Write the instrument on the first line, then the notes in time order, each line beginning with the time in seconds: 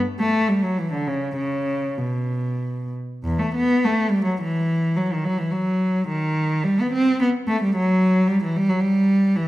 cello
0.19 A3
0.49 G3
0.63 F#3
0.78 E3
0.92 D3
1.08 C#3
1.36 C#3
1.98 B2
3.24 E2
3.40 A3
3.55 B3
3.85 A3
4.10 G3
4.25 F#3
4.41 E3
4.96 F#3
5.13 D#3
5.25 F#3
5.38 E3
5.51 F#3
6.07 D#3
6.64 G3
6.81 B3
6.93 C4
7.21 B3
7.48 A3
7.63 G3
7.76 F#3
8.28 G3
8.43 E3
8.56 G3
8.70 F#3
8.81 G3
9.36 E3